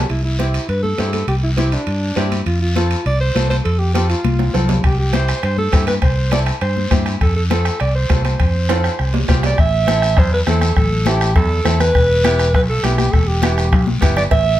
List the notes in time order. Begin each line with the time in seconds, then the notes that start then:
0.00 low timbale
0.09 C2 E4, high conga, high timbale, long guiro
0.24 E4, high conga
0.39 C4 E4 G4, high conga, high timbale, short guiro
0.54 high timbale, short guiro
0.69 G2 B4, high timbale, long guiro
0.83 A4, high conga
0.98 G2 C4 E4 G4, high conga, high timbale, low timbale, short guiro
1.13 A4, high conga, high timbale, short guiro
1.28 C2 G4, high conga, high timbale, long guiro
1.43 E4, high conga
1.57 C4 E4 G4, high conga, high timbale, short guiro
1.72 D4, high timbale, short guiro
1.87 G2, high timbale, long guiro
2.16 G2 C4 E4 G4, high conga, high timbale, low timbale, short guiro
2.32 high conga, high timbale, short guiro
2.46 F2 F4, high conga, high timbale, long guiro
2.62 F4, high conga
2.76 C4 F4 A4, high conga, high timbale, short guiro
2.91 high timbale, short guiro
3.06 C2 D5, high timbale, long guiro
3.21 C5
3.35 C2 C4 F4 A4, high conga, high timbale, low timbale, short guiro
3.50 C5, high conga, high timbale, short guiro
3.65 F2 A4, high conga, high timbale, long guiro
3.79 G4, high conga
3.94 C4 F4 G4 A4, high conga, high timbale, short guiro
4.10 F4, high timbale, short guiro
4.24 C2, high conga, high timbale
4.39 high conga, high timbale
4.54 C2 C4 F4 A4, low conga, high timbale, short guiro
4.69 low conga, low timbale, short guiro
4.84 C2 G4, bombo low, bombo rim, high timbale, long guiro
4.99 G4, high conga
5.13 C4 E4 G4 C5, bombo rim, high conga, high timbale, short guiro
5.28 bombo rim, high timbale, short guiro
5.43 G2 C5, bombo rim, high timbale, long guiro
5.58 A4, high conga
5.72 G2 C4 E4 G4, bombo low, bombo rim, high conga, high timbale, short guiro
5.87 B4, bombo rim, high conga, high timbale, short guiro
6.02 C2 C5, bombo low, bombo rim, high conga, high timbale, long guiro
6.18 high conga
6.31 C4 E4 A4 D5, bombo rim, high conga, high timbale, short guiro
6.46 bombo rim, high timbale, short guiro
6.61 G2 C5, bombo rim, high timbale, long guiro
6.77 high conga
6.91 G2 C4 E4 G4, bombo low, bombo rim, high conga, high timbale, short guiro
7.06 bombo rim, high timbale, short guiro
7.21 F2 A4, bombo low, bombo rim, high conga, high timbale, long guiro
7.36 A4, high conga
7.50 C4 F4 A4, bombo rim, high conga, high timbale, short guiro
7.65 bombo rim, high timbale, short guiro
7.80 C2 D5, bombo rim, high timbale, long guiro
7.95 C5
8.10 C2 C4 F4 A4, bombo low, bombo rim, high conga, high timbale, low timbale, short guiro
8.25 C5, bombo rim, high conga, high timbale, short guiro
8.40 F2, bombo low, bombo rim, high timbale, long guiro
8.55 high conga
8.69 C4 F4 A4, bombo rim, high conga, high timbale, short guiro
8.84 bombo rim, high timbale, short guiro
8.99 C2, bombo rim, long guiro
9.14 high conga, low timbale
9.28 C2 C4 F4 G4, bombo low, bombo rim, high conga, low timbale, short guiro
9.43 D5, bombo rim, low timbale, short guiro
9.58 A1 E5, bombo low, bombo rim, long guiro
9.73 high conga
9.87 C4 E4 A4, bombo rim, high conga, short guiro
10.02 bombo rim, short guiro
10.17 E2 C5, bombo low, bombo rim, high conga, low conga, long guiro
10.34 B4
10.47 E2 C4 E4 A4, bombo rim, high conga, short guiro
10.61 bombo rim, high conga, short guiro
10.76 A1 A4, bombo low, bombo rim, low conga, long guiro
10.92 high conga
11.06 C4 E4 G4 A4, bombo rim, high conga, short guiro
11.21 bombo rim, short guiro
11.36 E2 A4, bombo low, bombo rim, high conga, low conga, long guiro
11.65 E2 C4 E4 A4, bombo rim, high conga, short guiro
11.80 B4, bombo rim, high conga, short guiro
11.95 E1, bombo low, bombo rim, long guiro
12.10 high conga
12.24 B3 E4 G4, bombo rim, high conga, short guiro
12.39 bombo rim, short guiro
12.54 B1 B4, bombo low, bombo rim, high conga, low conga, long guiro
12.69 A4
12.83 B1 B3 E4 G4, bombo rim, high conga, short guiro
12.98 G4, bombo rim, high conga, short guiro
13.12 E1 A4, bombo low, bombo rim, long guiro
13.27 G4, high conga
13.42 B3 E4 G4, bombo rim, high conga, short guiro
13.58 bombo rim, short guiro
13.72 B1, bombo low, bombo rim, high conga, low conga, long guiro
13.87 high conga
14.01 G1 B3 E4 G4, bombo low, bombo rim, high conga, short guiro
14.16 D5, bombo rim, low conga, short guiro
14.31 A1 E5, bombo low, bombo rim, cowbell, long guiro
14.46 high conga